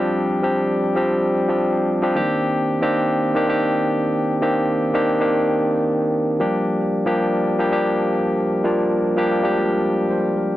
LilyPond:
\new Staff \with { instrumentName = "Tine electric piano" } { \time 4/4 \key c \minor \tempo 4 = 113 << { r1 | r1 | r1 | r1 |
r4. f''8 d''4 c''8 bes'8 | } \\ { <f g c' d' g'>8 r16 <f g c' d' g'>8. r16 <f g c' d' g'>8. r16 <f g c' d' g'>8. r16 <f g c' d' g'>16 | <ees bes c' d' g'>8. r8 <ees bes c' d' g'>8. r16 <ees bes c' d' g'>16 <ees bes c' d' g'>4~ <ees bes c' d' g'>16 r16 | r16 <ees bes c' d' g'>8. r16 <ees bes c' d' g'>16 r16 <ees bes c' d' g'>4~ <ees bes c' d' g'>16 r4 | <f g bes d' g'>8. r8 <f g bes d' g'>8. r16 <f g bes d' g'>16 <f g bes d' g'>4~ <f g bes d' g'>16 r16 |
r16 <f g bes d' f'>8. r16 <f g bes d' g'>16 r16 <f g aes bes d' g'>4~ <f g aes bes d' g'>16 r4 | } >> }